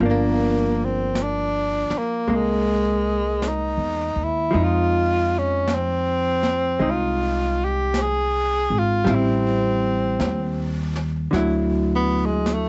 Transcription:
0.01 G1 F3 A#3, brush sweep
0.06 D4
0.11 A#3
0.85 C4
1.15 brush sweep, snare, hi-hat pedal
1.23 D4
1.90 muted upright bass stroke, snare
1.98 A#3
2.27 C2 G#3 A#3, brush sweep
2.34 G#3
3.42 brush sweep, snare, hi-hat pedal
3.48 D#4
3.77 E2
4.16 D#2
4.24 E4
4.51 F2 F3 G#3, brush sweep
4.55 D#4
4.63 F4
5.38 C#4
5.68 brush sweep, snare, hi-hat pedal
5.74 C4
6.43 snare
6.80 C2 G#3 D#4, brush sweep
6.90 F4
7.64 G4
7.94 brush sweep, snare, hi-hat pedal
8.01 G#4
8.70 G#1
8.79 F4
9.05 A1 G3 C4, brush sweep, snare
9.10 E4
9.15 C4
10.20 D#2, brush sweep, snare, hi-hat pedal
10.96 snare
11.31 D2 D3 F#3, brush sweep, snare
11.36 E4
11.96 B3
12.26 G#3
12.46 brush sweep, snare, hi-hat pedal
12.53 A3

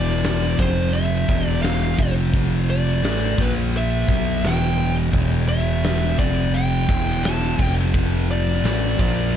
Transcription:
Already playing: E1 E2 B2 E3 D5
0.08 snare
0.24 snare, open hi-hat
0.58 F1 F2 C3 F3 C5, kick, open hi-hat
0.93 E5, open hi-hat
1.28 E1 E2 B2 E3, kick, open hi-hat
1.47 D5
1.63 F5, snare, open hi-hat
1.99 F1 F2 C3 F3, kick, open hi-hat
2.34 kick, open hi-hat
2.69 D5, open hi-hat
2.87 snare
3.03 A1 A2 E3 A3, snare, open hi-hat
3.38 A#1 A#2 F3 A#3 B4, kick, open hi-hat
3.74 E5, open hi-hat
4.08 B1 B2 F#3 B3, kick, open hi-hat
4.43 E1 E2 B2 E3, snare, open hi-hat
4.47 G5
4.78 open hi-hat
5.13 E1 E2 B2 E3, kick, open hi-hat
5.49 E5, open hi-hat
5.84 snare, open hi-hat
6.18 F1 F2 C3 F3 D5, kick, open hi-hat
6.54 G5, open hi-hat
6.89 E1 E2 B2 E3, kick, open hi-hat
7.24 A5, snare, open hi-hat
7.58 F1 F2 C3 F3, kick, open hi-hat
7.94 kick, open hi-hat
8.29 D5, open hi-hat
8.48 snare
8.64 A1 A2 E3 A3, snare, open hi-hat
8.99 A#1 A#2 F3 A#3 D5, kick, open hi-hat

